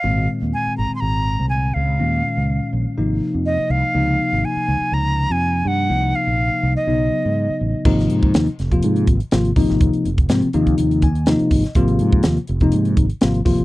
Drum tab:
CC |----------------|----------------|----------------|----------------|
HH |----------------|----------------|----------------|----------------|
SD |----------------|----------------|----------------|----------------|
BD |----------------|----------------|----------------|----------------|

CC |x---------------|----------------|----------------|
HH |-xx-xxxxxxxxxxox|xxxxxxxxxxxxxxox|xxx-xxxxxxxxxxox|
SD |-o--o-o-----o--o|----o-------o--o|----o-------o---|
BD |o--o---o--o---o-|o--o---o--o---o-|o--o---o--o---o-|